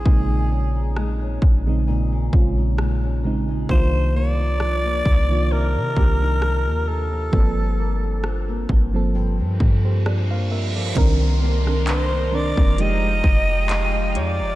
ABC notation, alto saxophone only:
X:1
M:4/4
L:1/8
Q:"Swing 16ths" 1/4=66
K:Gdor
V:1 name="Alto saxophone"
^G3 z4 z | c d3 B3 A- | A3 z4 z | [K:Clyd] z2 c d _e3 d |]